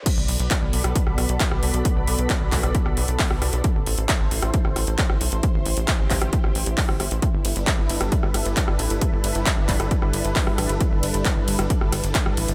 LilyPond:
<<
  \new Staff \with { instrumentName = "Analog synth pad" } { \time 4/4 \key b \phrygian \tempo 4 = 134 << { <b fis' d'' b''>1~ | <b fis' d'' b''>1 | c''1~ | c''1 |
<g d' a' b'>1~ | <g d' a' b'>1~ | <g d' a' b'>1 | } \\ { a'1~ | a'1 | e'1 | g'1 |
r1 | r1 | r1 | } >> }
  \new Staff \with { instrumentName = "Analog synth bass" } { \clef bass \time 4/4 \key b \phrygian r16 b,,16 b,,16 b,,16 r16 b,,16 b,,16 b,,16 r16 b,,16 b,,16 b,,16 r16 b,,16 c,16 b,,16 | r16 b,,16 b,,16 b,,16 r16 b,,16 b,,16 b,,16 r16 b,,16 b,,16 b,,16 r16 b,,16 c,16 b,,16 | r16 a,,16 a,,16 a,,16 r16 a,,16 a,,16 a,,16 r16 a,,16 a,,16 a,,16 r16 a,,16 b,,16 a,,16 | r16 a,,16 a,,16 a,,16 r16 a,,16 a,,16 a,,16 r16 a,,16 a,,16 a,,16 r16 a,,16 g,,16 a,,16 |
r16 g,,16 g,,16 g,,16 r16 g,,16 g,,16 g,,16 r16 g,,16 g,,16 g,,16 r16 g,,16 a,,16 g,,16 | r16 g,,16 g,,16 g,,16 r16 g,,16 g,,16 g,,16 r16 g,,16 g,,16 g,,16 r16 g,,16 a,,16 g,,16 | r16 g,,16 g,,16 g,,16 r16 g,,16 g,,16 g,,16 r16 g,,16 g,,16 g,,16 r16 g,,16 a,,16 g,,16 | }
  \new DrumStaff \with { instrumentName = "Drums" } \drummode { \time 4/4 <cymc hh bd>8 hho16 hh16 <hc hh bd>8 hho16 <hh ss>16 <hh bd>16 ss16 <hho ss>16 hh16 <hc hh bd>16 ss16 hho16 hh16 | <hh bd>8 hho16 hh16 <hc hh bd>8 <hc hho bd>16 <hh ss>16 <hh bd>16 ss16 hho16 hh16 <hc hho bd>16 ss16 <hho ss>16 hh16 | <hh bd>8 hho16 hh16 <hc hh bd>8 hho16 <hh ss>16 <hh bd>16 ss16 <hho ss>16 hh16 <hc hh bd>16 ss16 hho16 hh16 | <hh bd>8 hho16 hh16 <hc hh bd>8 <hc hho bd>16 <hh ss>16 <hh bd>16 ss16 hho16 hh16 <hc hho bd>16 ss16 <hho ss>16 hh16 |
<hh bd>8 <hho cymr>16 hh16 <hc hh bd>8 <hho cymr>16 <hh ss>16 <hh bd>16 ss16 <hho cymr ss>16 hh16 <hc hh bd>16 ss16 <hho cymr>16 hh16 | <hh bd>8 <hho cymr>16 hh16 <hc hh bd>8 <hc hho bd cymr>16 <hh ss>16 <hh bd>16 ss16 <hho cymr>16 hh16 <hc hho bd>16 ss16 <hho cymr ss>16 hh16 | <hh bd>8 <hho cymr>16 hh16 <hc hh bd>8 <hho cymr>16 <hh ss>16 <hh bd>16 ss16 <hho cymr ss>16 hh16 <hc hh bd>16 ss16 <hho cymr>16 hh16 | }
>>